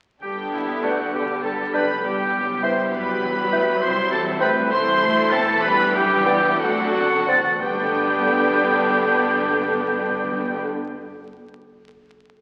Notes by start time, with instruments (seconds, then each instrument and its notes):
0.22 double bass section G1, cello section G2, viola section D3 B3, french horn section B3 D4, violin section D4 G4 G5, oboe G4, trumpet G4
0.52 double bass section B1, cello section B2, oboe E4, trumpet E4, violin section E5
0.83 double bass section A1, cello section A2, bassoon D4, trumpet F#4, oboe F#4, clarinet B4, violin section F#5, flute section G6
1.13 double bass section B1, cello section B2, viola section G3, violin section B3 G4 G5, oboe G4, trumpet G4
1.43 double bass section G1, cello section G2, oboe A4, trumpet A4, violin section A5
1.74 double bass section F#1, cello section F#2, bassoon D4, oboe B4, clarinet B4, trumpet B4, violin section B5, flute section G6
2.03 double bass section E1, cello section E2, viola section G3, french horn section G3 E4, violin section B3 G4 G5, oboe G4, trumpet G4
2.34 double bass section F#1, cello section F#2
2.63 double bass section G1, cello section G2, bassoon E4, clarinet B4, oboe C5, trumpet C5, violin section C6, flute section G6
2.93 double bass section F#1, cello section F#2, viola section F#3, oboe B4, trumpet B4, violin section B5
3.23 double bass section E1, cello section E2
3.52 cello section D2, double bass section D2, bassoon E4, clarinet B4, flute section G6
3.81 double bass section C2, cello section C2, violin section C4 E4 C6, oboe C5, trumpet C5
4.12 double bass section E1, cello section E2, oboe A4, trumpet A4, violin section A5
4.40 cello section D2, double bass section D2, bassoon C4, oboe B4, trumpet B4, clarinet E5, violin section B5, flute section G6
4.70 double bass section C2, cello section C2, viola section E3 A3, violin section A3 E4 C6, french horn section A3, oboe C5, trumpet C5
5.02 cello section D2, double bass section D2
5.30 double bass section E1, cello section E2, bassoon C4, oboe A4, trumpet A4, clarinet E5, violin section A5, flute section A6
5.62 cello section D2, double bass section D2, timpani D3, viola section G3, violin section B3 G4 B5, french horn section B3 D4, oboe B4, trumpet B4
5.94 double bass section F#1, cello section F#2, oboe G4, trumpet G4, violin section G5
6.26 double bass section E1, cello section E2, bassoon B3, clarinet D5, flute section G6
6.58 cello section D2, double bass section D2, viola section D3 F#3, french horn section C4, violin section D4 A4 F#5, oboe F#4, trumpet F#4
6.69 timpani D3
6.77 timpani D3
6.94 double bass section F#1, cello section F#2, timpani D3
7.02 timpani D3
7.11 timpani D3
7.20 timpani D3
7.27 double bass section E1, cello section E2, timpani D3, bassoon C4, clarinet D5, flute section A6
7.37 timpani D3
7.46 timpani D3
7.54 timpani D3
7.61 double bass section G1, cello section G2, timpani G2, viola section D3 B3, bassoon B3, french horn section B3 D4, violin section D4 B4 G5, trumpet G4, clarinet D5, oboe G5, flute section G6
7.70 timpani G2
7.76 timpani G2
7.82 timpani G2
7.88 timpani G2
7.95 timpani G2
8.01 timpani G2
8.08 timpani G2
8.15 timpani G2
8.22 timpani G2
8.28 timpani G2
8.34 timpani G2
8.41 timpani G2
8.48 timpani G2
8.54 timpani G2
8.61 timpani G2
8.68 timpani G2
8.74 timpani G2
8.81 timpani G2
8.88 timpani G2
8.94 timpani G2
9.01 timpani G2
9.07 timpani G2
9.14 timpani G2
9.20 timpani G2
9.26 timpani G2
9.33 timpani G2
9.40 timpani G2
9.46 timpani G2
9.52 timpani G2
9.59 timpani G2
9.65 timpani G2
9.71 timpani G2
9.78 timpani G2
9.84 timpani G2
9.91 timpani G2
9.98 timpani G2
10.04 timpani G2
10.11 timpani G2
10.17 timpani G2
10.23 timpani G2
10.30 timpani G2
10.37 timpani G2
10.43 timpani G2
10.49 timpani G2
10.56 timpani G2